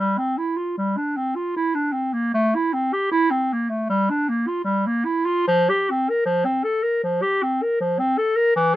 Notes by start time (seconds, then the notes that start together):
0.00 G3
0.18 C4
0.38 E4
0.57 F4
0.78 G3
0.97 D4
1.17 C4
1.35 F4
1.57 E4
1.75 D4
1.93 C4
2.13 A#3
2.34 A3
2.55 E4
2.73 C4
2.93 G4
3.12 E4
3.31 C4
3.53 A#3
3.70 A3
3.89 G3
4.10 D4
4.29 A#3
4.48 F4
4.64 G3
4.86 A#3
5.05 E4
5.25 F4
5.47 F3
5.70 G4
5.90 C4
6.10 A#4
6.25 F3
6.45 C4
6.64 A4
6.83 A#4
7.03 F3
7.22 G4
7.43 C4
7.63 A#4
7.80 F3
7.99 C4
8.18 A4
8.36 A#4
8.56 E3